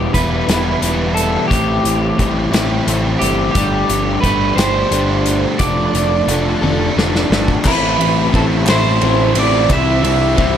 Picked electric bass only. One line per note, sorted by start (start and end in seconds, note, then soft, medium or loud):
0.14 0.41 E1 medium
0.48 0.75 E1 medium
0.82 1.36 E1 medium
1.51 1.78 A1 medium
1.84 2.12 A1 medium
2.19 2.46 A1 medium
2.53 2.80 A1 medium
2.87 3.14 A1 medium
3.21 3.48 G1 medium
3.55 3.82 G1 medium
3.90 4.17 G1 medium
4.24 4.51 G1 medium
4.56 4.84 G1 medium
4.91 5.45 G1 medium
5.60 5.87 F1 medium
5.94 6.21 F1 medium
6.28 6.55 F1 loud
6.62 6.89 F1 medium
6.97 7.24 F1 medium
7.30 7.57 G1 medium
7.65 7.97 A1 loud
7.98 8.31 A1 medium
8.34 8.66 A1 loud
8.67 8.99 A1 medium
9.02 9.34 A1 medium
9.36 9.68 A1 medium
9.70 10.02 C2 loud
10.03 10.35 C2 medium
10.38 10.57 C2 loud